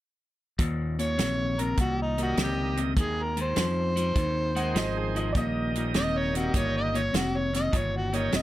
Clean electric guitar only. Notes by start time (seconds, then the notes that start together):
0.59 D#2 A#2
0.99 D#2 A#2
1.18 D#2 C3
1.59 D#2 C3
1.78 D#2 A#2
2.18 D#2 A#2
2.37 D#2 C3
2.77 D#2 C3
2.97 G#2 D#3
3.37 G#2 D#3
3.56 G#2 F3
3.96 G#2 F3
4.15 G#2 D#3
4.55 G#2 D#3
4.74 G#2 F3
5.15 G#2 F3
5.34 D#2 A#2
5.76 D#2 A#2
5.94 D#2 C3
6.35 D#2 C3
6.55 D#2 A#2
6.94 D#2 A#2
7.13 D#2 C3
7.53 D#2 C3
7.72 D#2 A#2
8.13 D#2 A#2
8.32 D#2 C3